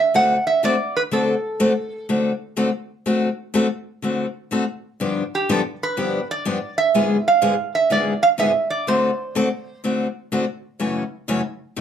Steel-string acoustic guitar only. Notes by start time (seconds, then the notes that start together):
0.14 D3 A3 C4 F#4 A4
0.63 D3 A3 C4 F#4 A4
1.11 D3 A3 C4 F#4 A4
1.60 D3 A3 C4 F#4 A4
2.09 D3 A3 C4 F#4 A4
2.57 D3 A3 C4 F#4 A4
3.06 D3 A3 C4 F#4 A4
3.54 D3 A3 C4 F#4 A4
4.02 D3 A3 C4 F#4 A4
4.51 D3 A3 C4 F#4 A4
5.00 G2 D3 F3 B3 D4 G4
5.49 G2 D3 F3 B3 D4 G4
5.97 G2 D3 F3 B3 D4 G4
6.45 G2 D3 F3 B3 D4 G4
6.94 G#2 D3 G#3 B3 F4 G#4
7.42 G#2 D3 G#3 B3 F4 G#4
7.90 G#2 D3 G#3 B3 F4 G#4
8.38 G#2 D3 G#3 B3 F4 G#4
8.87 D3 A3 C4 F#4 A4
9.35 D3 A3 C4 F#4 A4
9.84 D3 A3 C4 F#4 A4
10.32 D3 A3 C4 F#4 A4
10.79 F#2 C#3 E3 A3 C#4 F#4
11.28 F#2 C#3 E3 A3 C#4 F#4
11.76 B2 G3 A3 D#4 A4